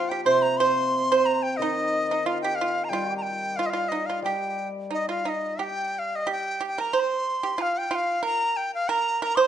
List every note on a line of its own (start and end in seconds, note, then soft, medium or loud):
0.00 0.94 F3 medium
0.00 0.11 F5 medium
0.09 0.27 G4 medium
0.09 0.24 G5 medium
0.24 1.60 C3 medium
0.24 0.58 C5 medium
0.24 0.44 C6 medium
0.42 0.59 A#5 medium
0.57 1.08 C5 medium
0.57 1.27 C6 medium
1.12 1.58 C5 medium
1.26 1.44 A#5 medium
1.43 1.58 G5 medium
1.57 3.57 D#3 medium
1.57 2.27 D#5 medium
1.62 2.08 D#4 medium
2.11 2.26 D#4 medium
2.26 2.42 F4 medium
2.26 2.41 F5 medium
2.41 2.59 G4 medium
2.41 2.57 G5 medium
2.55 2.86 F5 medium
2.61 2.91 F4 medium
2.84 2.91 A#5 medium
2.89 4.21 G3 medium
2.89 3.12 F4 medium
2.89 3.17 G5 medium
3.12 3.55 G4 medium
3.17 3.24 A#5 medium
3.22 3.58 G5 medium
3.56 3.72 F4 medium
3.56 3.68 F5 medium
3.66 3.71 D#5 medium
3.66 3.90 F5 medium
3.73 3.91 F4 medium
3.89 4.07 D#4 medium
3.89 4.08 D#5 medium
4.06 4.24 F4 medium
4.06 4.23 F5 medium
4.22 6.28 G3 medium
4.22 5.23 G4 medium
4.22 4.68 G5 medium
4.91 5.07 D#4 medium
4.91 5.09 D#5 medium
5.09 5.25 F4 medium
5.09 5.30 F5 medium
5.25 5.58 D#4 medium
5.25 5.64 D#5 medium
5.59 6.24 G4 medium
5.59 6.00 G5 medium
5.99 6.17 F5 medium
6.16 6.31 D#5 medium
6.27 6.59 G4 medium
6.32 6.62 G5 medium
6.61 6.77 G4 medium
6.67 6.82 G5 medium
6.78 6.93 A#4 medium
6.78 7.01 A#5 medium
6.93 7.40 C5 medium
7.00 7.63 C6 medium
7.43 7.58 G4 medium
7.58 7.90 F4 medium
7.58 7.79 F5 medium
7.78 7.97 G5 medium
7.91 8.23 F4 medium
7.95 8.25 F5 medium
8.23 8.85 A#4 medium
8.23 8.58 A#5 loud
8.57 8.74 G5 medium
8.75 8.92 F5 medium
8.89 9.20 A#4 medium
8.89 9.23 A#5 loud
9.22 9.37 A#4 medium
9.22 9.37 A#5 medium
9.36 9.47 C5 medium
9.36 9.43 D#6 medium
9.41 9.47 C6 medium